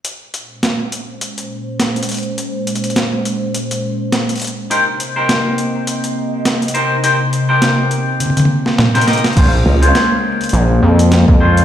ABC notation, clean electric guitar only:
X:1
M:4/4
L:1/16
Q:"Swing 16ths" 1/4=103
K:Bbdor
V:1 name="Clean electric guitar"
z16 | z16 | [EGBc] z2 [EGBc]8- [EGBc]3 [EGBc] z | [EGBc] z2 [EGBc]8- [EGBc]2 [EGBc] [EGBe] z |
[DFAc] z2 [DFAc]8- [DFAc]3 [DFAc] z |]